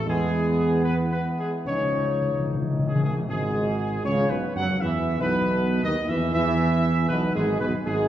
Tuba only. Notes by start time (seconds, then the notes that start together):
0.06 E2
1.65 C#2
3.27 G#1
4.04 C#2
4.29 B1
4.55 F#2
4.81 E2
5.19 B1
5.83 D#2
6.09 E2
6.34 E2
7.10 B1
7.34 G#1
7.60 B1
7.86 G#1